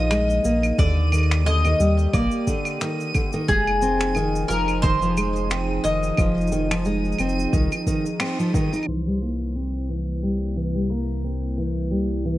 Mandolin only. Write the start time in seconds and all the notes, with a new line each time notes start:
Already playing: D#5
0.79 D5
1.46 D#5
2.13 D5
3.48 G#4
4.48 A#4
4.82 C5
5.84 D#5
8.88 C5
10.90 A#4